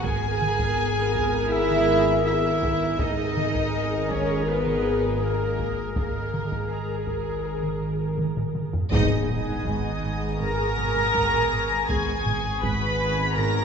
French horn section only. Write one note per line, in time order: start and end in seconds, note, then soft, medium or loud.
0.04 2.83 G#4 loud
0.04 2.83 A#4 loud
3.00 5.93 G#4 medium
3.00 5.92 A#4 loud
5.97 8.57 G#4 medium
5.97 8.57 A#4 medium
8.91 9.27 B3 medium
8.91 9.27 G#4 medium
10.41 10.68 B3 medium
10.41 10.68 G#4 medium
11.90 12.16 B3 medium
11.90 12.16 G#4 medium
13.38 13.64 B3 medium
13.38 13.64 G#4 medium